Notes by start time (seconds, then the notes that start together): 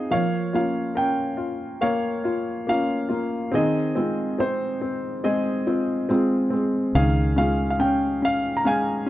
Already playing: C4 D#4 F4 G#4 C5 D#5 F5 G#5
0.11 F3 A#3 C#5 F5
0.53 A#3 C#4 F4 F5
0.95 C#4 A#4 G5
1.37 F4
1.81 A#3 C#5 F5
2.24 F4
2.67 A#3 C#4 F4 F5
3.09 A#3 F4
3.52 D#3 C4 G#4 D#5
3.95 G#3 C4 F4
4.39 C4 C5
4.81 C4
5.24 G#3 C4 G#4 D#5
5.67 C4 F4
6.09 G#3 C4 F4
6.50 G#3 C4
6.95 C#2 D#3 C#4 G#4 F5
7.36 G#3 C#4 F4 F5
7.70 F5
7.79 C#4 G5
8.22 C#4 F5
8.57 A#5
8.65 G#3 C#4 F5 G#5
9.06 C#4